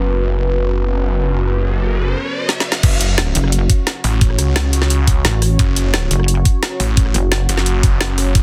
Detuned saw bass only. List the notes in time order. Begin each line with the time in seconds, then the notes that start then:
Already playing: F#1
2.83 F#1
4.04 A1
4.39 C#2
5.59 F#1
6.80 A1
7.49 F#1
8.35 F#1